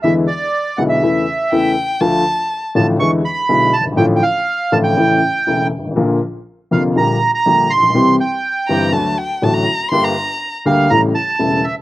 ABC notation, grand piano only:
X:1
M:4/4
L:1/16
Q:1/4=122
K:Dm
V:1 name="Grand piano" clef=bass
[E,,D,E,^G,=B,E]2 z4 [=B,,,=B,,D,G,B,E]2 [E,,^C,E,A,E]2 z2 [E,,C,E,A,E]2 z2 | [D,,D,F,A,F]2 z4 [A,,,A,,D,F,A,F]2 [E,,D,E,^G,=B,E]2 z2 [=B,,,=B,,D,G,B,E]2 z/2 ^F,,,/2 =G,,,/2 ^G,,,/2 | [A,,,A,,D,F,A,F]2 z4 [A,,,A,,D,F,A,F]2 [A,,,A,,^C,E,A,E]2 z2 [E,,,E,,C,E,A,E]2 z/2 G,,,/2 ^G,,,/2 A,,,/2 | [B,,,B,,D,F,B,F]2 z4 [F,,,F,,D,F,B,F]2 [B,,,B,,D,G,B,G]2 z2 [B,,,B,,D,G,B,G]2 z/2 A,,,/2 B,,,/2 =B,,,/2 |
[C,,C,E,G,CG]2 z4 [G,,,G,,E,G,CG]2 [D,,D,^F,A,^F]2 z2 [A,,,A,,D,F,A,F]2 z2 | [G,,,G,,D,G,B,G]2 z4 [D,,D,G,B,G]2 [A,,,A,,^C,G,A,E]2 z2 [E,,,E,,C,G,A,E]2 z2 |]